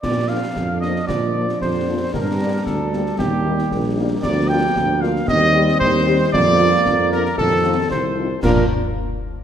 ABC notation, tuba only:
X:1
M:2/4
L:1/8
Q:1/4=114
K:Bb
V:1 name="Tuba" clef=bass
B,,2 F,,2 | B,,2 F,,2 | G,,2 D,,2 | E,,2 B,,,2 |
D,,2 D,,2 | E,,2 E,,2 | F,,2 F,,2 | F,,2 C,,2 |
B,, z3 |]